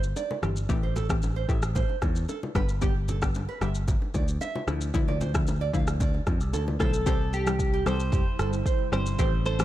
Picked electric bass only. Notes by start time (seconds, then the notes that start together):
Already playing: G1
0.43 G1
0.69 A1
1.49 A1
2.02 E2
2.55 G1
3.61 G1
4.14 D2
4.67 D2
4.94 D2
5.73 D2
6.27 F2
6.41 C2
6.53 D2
6.80 B1
7.07 C2
7.86 C2
8.39 G1
8.92 G1
9.19 A1